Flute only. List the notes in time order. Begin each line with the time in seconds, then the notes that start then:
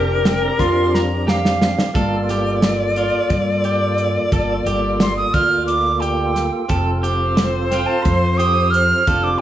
0.27 G5
0.42 A#5
0.59 C6
0.95 A#5
1.29 F5
5.02 C6
5.17 D#6
5.34 F6
5.67 D6
6.00 G5
7.71 G5
7.86 A5
8.03 C6
8.38 D#6
8.71 F6
9.24 D6